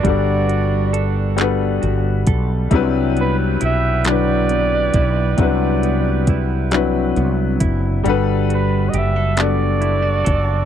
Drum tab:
HH |xxxxxx|xxxxxx|xxxxxx|xxxxxx|
CP |---x--|---x--|---x--|---x--|
BD |o----o|o----o|o-o--o|-----o|